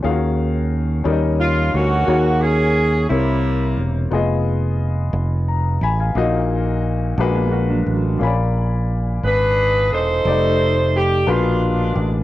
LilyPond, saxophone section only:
\new Staff \with { instrumentName = "Saxophone section" } { \time 6/8 \key ees \minor \tempo 4. = 59 << { r2 f'8 ges'8~ | ges'8 aes'4 e'4 r8 | r2. | r2. |
r4. ces''4 c''8~ | c''4 g'8 f'4 r8 | } \\ { r2 r8 <bes des'>8~ | <bes des'>8 des'4 <g bes>4. | r2. | r2. |
r4. <d' aes'>4 <ees' a'>8~ | <ees' a'>4 r8 <aes d'>4. | } >> }